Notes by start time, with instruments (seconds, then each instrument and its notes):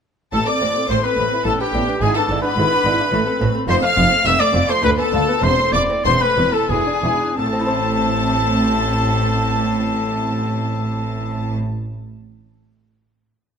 0.32 double bass section A1, cello section A2, lute A2, viola section A3, violin section A4 A5, trumpet A4
0.47 viola section C4, lute A4, violin section D5 D6, trumpet D5
0.61 double bass section A1, cello section A2, lute A2 C4, viola section A3
0.76 lute A3, viola section C4
0.89 double bass section A1, cello section A2, lute A2, viola section A3, violin section C5 C6, trumpet C5
1.03 lute A3, viola section C4, violin section B4 B5, trumpet B4
1.17 double bass section A1, cello section A2, lute A2 C4, viola section A3
1.31 viola section C4, lute E4
1.45 double bass section A1, cello section A2, lute A2, viola section B3, violin section A4 A5, trumpet A4
1.59 viola section D4, violin section G4 G5, trumpet G4, lute B4
1.73 double bass section A1, cello section A2, lute A2 D4, viola section B3
1.88 lute B3, viola section D4
2.01 double bass section G#1, cello section G#2, lute G#2, viola section E4, violin section G#4 G#5, trumpet G#4
2.15 viola section D4, violin section A4 A5, trumpet A4, lute B4
2.29 double bass section G#1, cello section G#2, lute G#2 D4, viola section E4
2.42 lute B3, viola section D4, violin section B4 B5, trumpet B4
2.56 double bass section G#1, cello section G#2, lute G#2 A3, viola section E4
2.72 lute B3, viola section D4
2.84 double bass section G#1, cello section G#2, lute G#2 D4, viola section E4
3.00 viola section D4, lute E4
3.12 double bass section A1, cello section A2, lute A2, viola section A3
3.27 viola section C4, lute A4
3.41 double bass section A1, cello section A2, lute A2 C4, viola section A3
3.55 lute A3, viola section C4
3.68 double bass section F1, lute F2, cello section F2, viola section C4, violin section C5 C6, trumpet C5
3.83 viola section A3, lute C5, trumpet F5, violin section F5 F6
3.96 double bass section F1, lute F2 F4, cello section F2, viola section C4
4.10 viola section A3, lute C4
4.24 double bass section F1, cello section F2, lute F2 B3, viola section C4, violin section E5 E6, trumpet E5
4.39 viola section A3, lute C4, violin section D5 D6, trumpet D5
4.53 double bass section F1, cello section F2, lute F2 F4, viola section C4
4.69 viola section A3, lute A4, violin section C5 C6, trumpet C5
4.83 cello section D2, lute D2, double bass section D2, viola section A3, violin section B4 B5, trumpet B4
4.98 viola section B3, violin section A4 A5, trumpet A4, lute B4
5.12 cello section D2, double bass section D2, lute D2 F4, viola section A3
5.28 lute B3, viola section B3
5.42 double bass section E1, cello section E2, lute E2, viola section C4, violin section C5 C6, trumpet C5
5.59 viola section A3, lute C5
5.73 double bass section E1, cello section E2, lute E2 E4, viola section C4, trumpet D5, violin section D5 D6
5.89 viola section A3, lute C4
6.04 double bass section E1, cello section E2, lute E2 B3, viola section C4, trumpet C5, violin section C5 C6
6.20 viola section A3, lute C4, violin section B4 B5, trumpet B4
6.37 double bass section E1, cello section E2, lute E2 E4, viola section C4
6.52 viola section A3, violin section A4 A5, trumpet A4, lute A4
6.69 double bass section E1, cello section E2, lute E2, viola section E4, violin section G#4 G#5, trumpet G#4
6.86 viola section D4, lute D5
7.02 double bass section E1, cello section E2, lute E2 E4, viola section E4
7.20 viola section D4, lute D4
7.37 double bass section A1, cello section A2, lute A2, viola section C4, trumpet A4, violin section A5
7.46 lute A3
7.53 lute C4
7.60 lute E4
7.67 lute C5